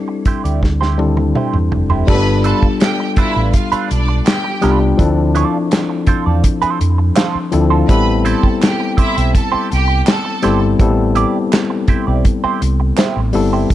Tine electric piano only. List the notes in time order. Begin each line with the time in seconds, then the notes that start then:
Already playing: G3 C4 D4 E4 A4
0.98 G3 C4 D4 E4 A4
2.07 G3 A3 D4 F4 A4
2.14 B3
4.61 G3 B3 D4 F4 G4
4.97 F3 C4 D4 E4 A4
7.51 F3 C4 D4 E4 A4
7.88 G3 B3 C4 E4 A4
10.42 G3 B3 C4 E4 A4
10.79 G3 B3 C4 E4 A4
13.33 G3 B3 C4 E4 A4